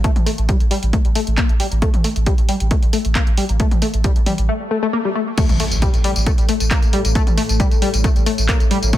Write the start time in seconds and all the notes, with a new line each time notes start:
0.04 A3, kick, closed hi-hat
0.16 A1, closed hi-hat, mid tom
0.26 A3, open hi-hat
0.38 A1, closed hi-hat
0.49 G3, kick, closed hi-hat
0.60 A1, closed hi-hat
0.71 G3, open hi-hat
0.83 A1, closed hi-hat
0.93 A3, kick, closed hi-hat
1.05 A1, closed hi-hat
1.15 A3, open hi-hat
1.27 A1, closed hi-hat
1.38 A#3, kick, clap, closed hi-hat
1.49 A1, closed hi-hat
1.60 G3, open hi-hat
1.72 A1, closed hi-hat
1.82 A3, kick, closed hi-hat
1.94 A1, closed hi-hat, mid tom
2.04 A3, open hi-hat
2.16 A1, closed hi-hat
2.26 G3, kick, closed hi-hat
2.38 A1, closed hi-hat
2.49 G3, open hi-hat
2.60 A1, closed hi-hat
2.71 A3, kick, closed hi-hat
2.83 A1, closed hi-hat
2.93 A3, open hi-hat
3.05 A1, closed hi-hat
3.15 A#3, kick, clap, closed hi-hat
3.27 A1, closed hi-hat
3.37 G3, open hi-hat
3.49 A1, closed hi-hat
3.60 A3, kick, closed hi-hat
3.71 A1, closed hi-hat, mid tom
3.82 A3, open hi-hat
3.94 A1, closed hi-hat
4.04 G3, kick, closed hi-hat
4.16 A1, closed hi-hat
4.26 G3, open hi-hat, mid tom
4.38 A1, closed hi-hat
4.49 A3, swell
4.71 A3
4.83 A3
4.93 A#3
5.05 G3
5.15 A3
5.37 A2 A3, kick, closed hi-hat, crash, tambourine, impact
5.49 A1, closed hi-hat, mid tom, tambourine
5.60 A3, open hi-hat
5.71 A1, closed hi-hat, tambourine
5.82 G3, kick, closed hi-hat, tambourine
5.94 A1, closed hi-hat, tambourine
6.04 G3, open hi-hat
6.16 A1, closed hi-hat, tambourine
6.26 A3, kick, closed hi-hat, tambourine
6.38 A1, closed hi-hat, tambourine
6.49 A3, open hi-hat
6.60 A1, closed hi-hat, tambourine
6.71 A#3, kick, clap, closed hi-hat, tambourine
6.83 A1, closed hi-hat, tambourine
6.93 G3, open hi-hat
7.05 A1, closed hi-hat, tambourine
7.15 A3, kick, closed hi-hat, tambourine
7.27 A1, closed hi-hat, mid tom, tambourine
7.38 A3, open hi-hat
7.49 A1, closed hi-hat, tambourine
7.60 G3, kick, closed hi-hat, tambourine
7.71 A1, closed hi-hat, tambourine
7.82 G3, open hi-hat
7.94 A1, closed hi-hat, tambourine
8.04 A3, kick, closed hi-hat, tambourine
8.16 A1, closed hi-hat, tambourine
8.26 A3, open hi-hat
8.38 A1, closed hi-hat, tambourine
8.49 A#3, kick, clap, closed hi-hat
8.60 A1, closed hi-hat, tambourine
8.71 G3, open hi-hat
8.83 A1, closed hi-hat, tambourine
8.93 A3, kick, closed hi-hat, tambourine